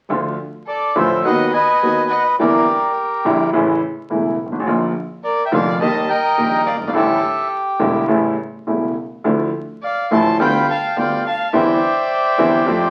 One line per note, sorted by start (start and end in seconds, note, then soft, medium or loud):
0.09 0.34 D2 medium
0.09 0.34 D3 medium
0.09 0.34 F3 medium
0.09 0.34 A3 soft
0.09 0.34 F4 medium
0.67 0.94 A4 medium
0.67 0.97 D5 medium
0.95 1.20 A1 medium
0.95 1.21 A1 medium
0.95 1.20 A2 medium
0.95 1.20 D3 medium
0.95 1.20 F3 medium
0.95 1.20 A3 medium
0.95 1.20 F4 medium
0.95 1.23 C5 medium
0.95 1.26 E5 medium
1.24 1.49 D#2 medium
1.24 1.49 D#3 medium
1.24 1.49 F#3 medium
1.24 1.49 B3 medium
1.24 1.49 F#4 medium
1.24 1.53 B4 medium
1.24 1.51 D#5 medium
1.24 1.53 D#5 medium
1.24 1.51 F#5 medium
1.53 2.36 B4 medium
1.53 2.06 D#5 medium
1.53 2.36 D#5 medium
1.53 2.12 G#5 medium
1.83 2.06 D#2 soft
1.83 2.07 D#2 soft
1.83 2.07 D#3 soft
1.83 2.06 F#3 soft
1.83 2.07 B3 soft
1.83 2.07 F#4 soft
2.10 2.23 D#5 medium
2.10 2.23 F#5 medium
2.39 2.63 E2 medium
2.39 2.63 D3 medium
2.39 2.63 E3 medium
2.39 2.63 G3 medium
2.39 2.63 A#3 medium
2.39 2.64 E4 medium
2.39 3.50 G4 soft
2.39 2.92 A#4 medium
2.39 3.50 A#4 soft
2.39 2.92 D5 medium
3.25 3.49 A#1 medium
3.25 3.49 A#2 medium
3.25 3.49 D3 medium
3.25 3.49 G3 medium
3.25 3.49 A#3 medium
3.25 3.49 E4 medium
3.53 3.77 A1 medium
3.53 3.77 A2 medium
3.53 3.77 C#3 medium
3.53 3.77 E3 medium
3.53 3.77 A3 medium
3.53 3.77 E4 medium
4.10 4.34 E1 soft
4.10 4.34 E1 medium
4.10 4.34 E2 soft
4.10 4.34 C#3 soft
4.10 4.34 E3 soft
4.10 4.34 A3 soft
4.10 4.34 E4 soft
4.39 4.66 G#1 soft
4.46 4.53 G1 soft
4.52 4.60 G#1 medium
4.60 4.67 A1 medium
4.67 4.91 A#1 medium
4.67 4.91 A#2 medium
4.67 4.91 D3 medium
4.67 4.91 F3 medium
4.67 4.91 A#3 medium
4.67 4.91 F4 medium
5.24 5.44 A#4 medium
5.24 5.44 D5 medium
5.46 5.52 E5 soft
5.46 5.52 G5 medium
5.52 5.76 F1 medium
5.52 5.76 F2 medium
5.52 5.76 D3 medium
5.52 5.76 F3 medium
5.52 5.76 A#3 medium
5.52 5.76 F4 medium
5.52 5.79 D5 medium
5.52 5.79 F5 medium
5.81 6.04 D#2 medium
5.81 6.05 D#2 medium
5.81 6.05 D#3 medium
5.81 6.05 G3 medium
5.81 6.05 A#3 medium
5.81 6.05 G4 medium
5.81 6.07 D#5 medium
5.81 6.09 D#5 medium
5.81 6.10 A5 medium
6.09 6.91 A#4 medium
6.09 6.62 D#5 medium
6.09 6.91 D#5 medium
6.09 6.62 G5 medium
6.38 6.61 A#1 soft
6.38 6.62 A#1 medium
6.38 6.61 A#2 soft
6.38 6.61 D#3 soft
6.38 6.62 G3 soft
6.38 6.61 A#3 soft
6.38 6.62 G4 soft
6.66 6.95 G1 soft
6.66 6.76 D5 medium
6.66 6.76 F5 medium
6.74 6.80 F#1 soft
6.80 6.87 G1 medium
6.87 6.94 G#1 medium
6.87 6.94 D5 soft
6.87 6.95 F5 medium
6.94 7.18 A1 medium
6.94 7.19 A1 medium
6.94 7.18 A2 medium
6.94 7.18 D3 medium
6.94 7.18 G3 medium
6.94 7.18 A3 soft
6.94 7.18 E4 medium
6.94 8.05 G4 medium
6.94 7.48 A4 medium
6.94 7.48 E5 medium
7.79 8.04 E1 medium
7.79 8.04 E2 medium
7.79 8.04 D3 medium
7.79 8.04 G3 medium
7.79 8.04 A3 medium
7.79 8.04 E4 medium
8.08 8.32 A1 medium
8.08 8.33 A1 medium
8.08 8.33 A2 medium
8.08 8.32 C#3 medium
8.08 8.33 G3 medium
8.08 8.33 A3 medium
8.08 8.33 E4 medium
8.67 8.91 E1 soft
8.67 8.91 E2 soft
8.67 8.91 C#3 soft
8.67 8.91 G3 soft
8.67 8.91 A3 soft
8.67 8.91 E4 soft
9.24 9.49 D2 medium
9.24 9.49 D3 medium
9.24 9.49 F3 medium
9.24 9.49 A3 soft
9.24 9.49 E4 medium
9.83 10.09 D5 medium
9.83 10.13 F5 medium
10.11 10.35 A1 medium
10.11 10.35 A2 medium
10.11 10.35 D3 medium
10.11 10.35 F3 medium
10.11 10.35 A3 medium
10.11 10.35 E4 medium
10.11 10.38 A5 medium
10.11 10.38 C6 medium
10.40 10.64 D2 medium
10.40 10.64 D3 medium
10.40 10.64 G3 medium
10.40 10.64 B3 medium
10.40 10.64 F4 medium
10.40 11.49 F5 medium
10.40 10.97 G5 medium
10.40 10.67 G5 medium
10.40 10.67 B5 medium
10.70 10.95 F5 medium
10.70 10.98 A5 medium
10.96 11.20 D2 medium
10.96 11.20 D2 soft
10.96 11.20 D3 soft
10.96 11.20 G3 soft
10.96 11.20 B3 soft
10.96 11.20 F4 soft
10.96 11.24 D5 medium
10.96 11.24 G5 medium
11.26 11.52 F5 medium
11.26 11.55 A5 medium
11.53 11.77 E2 medium
11.53 11.77 D3 medium
11.53 11.77 E3 medium
11.53 11.77 G3 medium
11.53 11.77 C4 medium
11.53 11.77 E4 medium
11.53 12.90 C5 medium
11.53 12.90 D5 medium
11.53 12.90 E5 medium
11.53 12.90 G5 medium
12.38 12.62 E2 medium
12.38 12.62 D3 medium
12.38 12.62 E3 medium
12.38 12.62 G3 medium
12.38 12.62 C4 medium
12.38 12.62 E4 medium
12.66 12.90 F2 medium
12.66 12.90 F3 medium
12.66 12.90 A3 medium
12.66 12.90 C4 medium
12.66 12.90 G4 medium